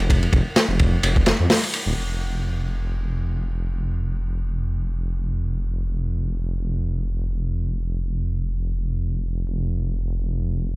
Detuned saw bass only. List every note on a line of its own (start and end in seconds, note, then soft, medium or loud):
0.00 0.26 F1 medium
0.33 0.41 F1 loud
0.69 0.96 F1 loud
1.03 1.32 F1 loud
1.40 1.46 F2 medium
1.86 1.93 D#1 medium
1.97 9.45 F1 medium
9.47 10.76 F1 medium